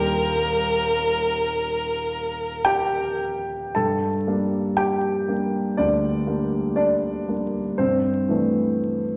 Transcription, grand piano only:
0, 0, Header, 1, 2, 480
1, 0, Start_track
1, 0, Key_signature, -2, "minor"
1, 0, Tempo, 1090909
1, 1647, Tempo, 1008403
1, 1648, Time_signature, 4, 2, 24, 8
1, 4229, End_track
2, 0, Start_track
2, 0, Title_t, "Grand piano"
2, 0, Program_c, 0, 0
2, 0, Control_c, 0, 64, 127
2, 0, Note_on_c, 0, 27, 52
2, 0, Note_on_c, 0, 39, 61
2, 0, Note_on_c, 0, 55, 46
2, 0, Note_on_c, 0, 58, 48
2, 0, Note_on_c, 0, 62, 44
2, 0, Note_on_c, 0, 67, 76
2, 0, Note_on_c, 0, 79, 100
2, 1158, Note_off_c, 0, 79, 0
2, 1163, Note_off_c, 0, 67, 0
2, 1165, Note_on_c, 0, 79, 97
2, 1170, Note_on_c, 0, 67, 75
2, 1619, Note_off_c, 0, 39, 0
2, 1622, Note_off_c, 0, 55, 0
2, 1626, Note_off_c, 0, 58, 0
2, 1629, Note_off_c, 0, 27, 0
2, 1629, Note_off_c, 0, 62, 0
2, 1633, Note_off_c, 0, 67, 0
2, 1648, Note_off_c, 0, 79, 0
2, 1649, Note_on_c, 0, 81, 77
2, 1654, Note_on_c, 0, 43, 53
2, 1655, Note_on_c, 0, 69, 59
2, 1658, Control_c, 0, 64, 0
2, 1744, Control_c, 0, 64, 127
2, 1889, Note_off_c, 0, 43, 0
2, 1899, Note_on_c, 0, 55, 42
2, 1901, Note_on_c, 0, 58, 40
2, 1903, Note_on_c, 0, 62, 46
2, 2119, Note_off_c, 0, 69, 0
2, 2134, Note_on_c, 0, 79, 82
2, 2135, Note_off_c, 0, 81, 0
2, 2140, Note_on_c, 0, 67, 61
2, 2358, Note_off_c, 0, 55, 0
2, 2359, Note_off_c, 0, 58, 0
2, 2360, Note_off_c, 0, 62, 0
2, 2379, Note_on_c, 0, 55, 36
2, 2381, Note_on_c, 0, 58, 38
2, 2384, Note_on_c, 0, 62, 39
2, 2596, Note_off_c, 0, 55, 0
2, 2596, Note_off_c, 0, 67, 0
2, 2597, Note_off_c, 0, 58, 0
2, 2598, Note_off_c, 0, 62, 0
2, 2612, Note_off_c, 0, 79, 0
2, 2614, Note_on_c, 0, 74, 82
2, 2618, Note_on_c, 0, 38, 45
2, 2620, Note_on_c, 0, 62, 59
2, 2844, Note_off_c, 0, 38, 0
2, 2846, Note_off_c, 0, 62, 0
2, 2849, Note_on_c, 0, 55, 37
2, 2850, Note_on_c, 0, 58, 41
2, 2854, Note_on_c, 0, 62, 40
2, 3075, Note_off_c, 0, 74, 0
2, 3080, Note_off_c, 0, 62, 0
2, 3082, Note_on_c, 0, 74, 75
2, 3087, Note_on_c, 0, 62, 63
2, 3310, Note_off_c, 0, 55, 0
2, 3310, Note_off_c, 0, 58, 0
2, 3327, Note_off_c, 0, 62, 0
2, 3329, Note_on_c, 0, 55, 38
2, 3333, Note_on_c, 0, 58, 33
2, 3335, Note_on_c, 0, 62, 36
2, 3552, Note_off_c, 0, 55, 0
2, 3554, Note_off_c, 0, 58, 0
2, 3555, Note_off_c, 0, 62, 0
2, 3569, Note_off_c, 0, 74, 0
2, 3569, Note_on_c, 0, 72, 72
2, 3573, Note_on_c, 0, 43, 52
2, 3575, Note_on_c, 0, 60, 57
2, 3579, Control_c, 0, 64, 0
2, 3655, Control_c, 0, 64, 127
2, 3805, Note_off_c, 0, 43, 0
2, 3810, Note_on_c, 0, 52, 40
2, 3813, Note_on_c, 0, 57, 39
2, 3815, Note_on_c, 0, 59, 37
2, 3817, Note_on_c, 0, 62, 39
2, 4229, Note_off_c, 0, 52, 0
2, 4229, Note_off_c, 0, 57, 0
2, 4229, Note_off_c, 0, 59, 0
2, 4229, Note_off_c, 0, 60, 0
2, 4229, Note_off_c, 0, 62, 0
2, 4229, Note_off_c, 0, 72, 0
2, 4229, End_track
0, 0, End_of_file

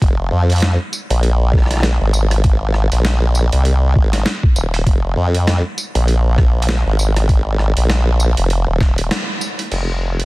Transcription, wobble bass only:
0, 0, Header, 1, 2, 480
1, 0, Start_track
1, 0, Key_signature, -4, "minor"
1, 0, Tempo, 606061
1, 14, Time_signature, 4, 2, 24, 8
1, 8118, End_track
2, 0, Start_track
2, 0, Title_t, "Wobble bass"
2, 0, Program_c, 0, 39
2, 13, Note_on_c, 0, 29, 95
2, 238, Note_off_c, 0, 29, 0
2, 255, Note_on_c, 0, 41, 98
2, 611, Note_off_c, 0, 41, 0
2, 873, Note_on_c, 0, 34, 94
2, 1571, Note_off_c, 0, 34, 0
2, 1594, Note_on_c, 0, 32, 96
2, 2291, Note_off_c, 0, 32, 0
2, 2314, Note_on_c, 0, 34, 97
2, 2771, Note_off_c, 0, 34, 0
2, 2794, Note_on_c, 0, 36, 99
2, 3118, Note_off_c, 0, 36, 0
2, 3133, Note_on_c, 0, 32, 98
2, 3358, Note_off_c, 0, 32, 0
2, 3614, Note_on_c, 0, 27, 96
2, 3838, Note_off_c, 0, 27, 0
2, 3853, Note_on_c, 0, 29, 97
2, 4077, Note_off_c, 0, 29, 0
2, 4095, Note_on_c, 0, 41, 99
2, 4452, Note_off_c, 0, 41, 0
2, 4714, Note_on_c, 0, 34, 93
2, 5411, Note_off_c, 0, 34, 0
2, 5434, Note_on_c, 0, 32, 99
2, 6131, Note_off_c, 0, 32, 0
2, 6154, Note_on_c, 0, 34, 97
2, 6611, Note_off_c, 0, 34, 0
2, 6636, Note_on_c, 0, 29, 97
2, 6853, Note_off_c, 0, 29, 0
2, 6876, Note_on_c, 0, 27, 99
2, 7199, Note_off_c, 0, 27, 0
2, 7696, Note_on_c, 0, 29, 86
2, 8118, Note_off_c, 0, 29, 0
2, 8118, End_track
0, 0, End_of_file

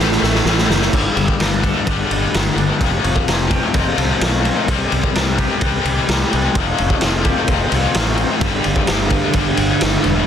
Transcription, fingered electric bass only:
0, 0, Header, 1, 2, 480
1, 0, Start_track
1, 0, Tempo, 468019
1, 953, Time_signature, 4, 2, 24, 8
1, 10531, End_track
2, 0, Start_track
2, 0, Title_t, "Fingered electric bass"
2, 0, Program_c, 0, 33
2, 0, Note_on_c, 0, 33, 91
2, 198, Note_off_c, 0, 33, 0
2, 224, Note_on_c, 0, 33, 88
2, 434, Note_off_c, 0, 33, 0
2, 461, Note_on_c, 0, 33, 91
2, 672, Note_off_c, 0, 33, 0
2, 710, Note_on_c, 0, 30, 91
2, 917, Note_off_c, 0, 30, 0
2, 956, Note_on_c, 0, 31, 87
2, 1100, Note_off_c, 0, 31, 0
2, 1194, Note_on_c, 0, 31, 84
2, 1339, Note_off_c, 0, 31, 0
2, 1437, Note_on_c, 0, 31, 78
2, 1727, Note_off_c, 0, 31, 0
2, 1921, Note_on_c, 0, 31, 90
2, 2065, Note_off_c, 0, 31, 0
2, 2161, Note_on_c, 0, 31, 86
2, 2305, Note_off_c, 0, 31, 0
2, 2409, Note_on_c, 0, 31, 89
2, 2551, Note_off_c, 0, 31, 0
2, 2624, Note_on_c, 0, 31, 83
2, 2774, Note_off_c, 0, 31, 0
2, 2877, Note_on_c, 0, 29, 95
2, 3023, Note_off_c, 0, 29, 0
2, 3123, Note_on_c, 0, 29, 88
2, 3267, Note_off_c, 0, 29, 0
2, 3360, Note_on_c, 0, 29, 86
2, 3651, Note_off_c, 0, 29, 0
2, 3841, Note_on_c, 0, 29, 88
2, 3986, Note_off_c, 0, 29, 0
2, 4074, Note_on_c, 0, 36, 88
2, 4222, Note_off_c, 0, 36, 0
2, 4320, Note_on_c, 0, 35, 90
2, 4611, Note_off_c, 0, 35, 0
2, 4802, Note_on_c, 0, 36, 91
2, 4947, Note_off_c, 0, 36, 0
2, 5046, Note_on_c, 0, 36, 88
2, 5190, Note_off_c, 0, 36, 0
2, 5292, Note_on_c, 0, 36, 86
2, 5579, Note_off_c, 0, 36, 0
2, 5760, Note_on_c, 0, 36, 92
2, 5906, Note_off_c, 0, 36, 0
2, 5995, Note_on_c, 0, 36, 83
2, 6142, Note_off_c, 0, 36, 0
2, 6243, Note_on_c, 0, 36, 95
2, 6387, Note_off_c, 0, 36, 0
2, 6493, Note_on_c, 0, 36, 84
2, 6635, Note_off_c, 0, 36, 0
2, 6727, Note_on_c, 0, 29, 91
2, 6870, Note_off_c, 0, 29, 0
2, 6969, Note_on_c, 0, 29, 86
2, 7111, Note_off_c, 0, 29, 0
2, 7202, Note_on_c, 0, 29, 88
2, 7491, Note_off_c, 0, 29, 0
2, 7672, Note_on_c, 0, 29, 93
2, 7819, Note_off_c, 0, 29, 0
2, 7916, Note_on_c, 0, 36, 82
2, 8061, Note_off_c, 0, 36, 0
2, 8159, Note_on_c, 0, 33, 85
2, 8447, Note_off_c, 0, 33, 0
2, 8626, Note_on_c, 0, 31, 95
2, 8773, Note_off_c, 0, 31, 0
2, 8879, Note_on_c, 0, 31, 91
2, 9022, Note_off_c, 0, 31, 0
2, 9116, Note_on_c, 0, 31, 90
2, 9404, Note_off_c, 0, 31, 0
2, 9586, Note_on_c, 0, 31, 91
2, 9732, Note_off_c, 0, 31, 0
2, 9821, Note_on_c, 0, 31, 91
2, 9969, Note_off_c, 0, 31, 0
2, 10073, Note_on_c, 0, 31, 91
2, 10217, Note_off_c, 0, 31, 0
2, 10310, Note_on_c, 0, 28, 86
2, 10455, Note_off_c, 0, 28, 0
2, 10531, End_track
0, 0, End_of_file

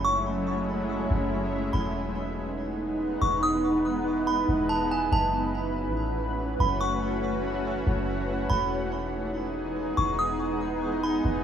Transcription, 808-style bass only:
0, 0, Header, 1, 2, 480
1, 0, Start_track
1, 0, Tempo, 422535
1, 56, Time_signature, 4, 2, 24, 8
1, 12992, End_track
2, 0, Start_track
2, 0, Title_t, "808-style bass"
2, 0, Program_c, 0, 38
2, 0, Note_on_c, 0, 30, 96
2, 1209, Note_off_c, 0, 30, 0
2, 1255, Note_on_c, 0, 30, 104
2, 1947, Note_off_c, 0, 30, 0
2, 1974, Note_on_c, 0, 28, 108
2, 3609, Note_off_c, 0, 28, 0
2, 3655, Note_on_c, 0, 28, 102
2, 5050, Note_off_c, 0, 28, 0
2, 5095, Note_on_c, 0, 28, 100
2, 5786, Note_off_c, 0, 28, 0
2, 5815, Note_on_c, 0, 30, 103
2, 6655, Note_on_c, 0, 33, 102
2, 6672, Note_off_c, 0, 30, 0
2, 7453, Note_off_c, 0, 33, 0
2, 7494, Note_on_c, 0, 30, 100
2, 8889, Note_off_c, 0, 30, 0
2, 8937, Note_on_c, 0, 30, 106
2, 9627, Note_off_c, 0, 30, 0
2, 9657, Note_on_c, 0, 28, 108
2, 11291, Note_off_c, 0, 28, 0
2, 11334, Note_on_c, 0, 28, 99
2, 12729, Note_off_c, 0, 28, 0
2, 12776, Note_on_c, 0, 28, 99
2, 12992, Note_off_c, 0, 28, 0
2, 12992, End_track
0, 0, End_of_file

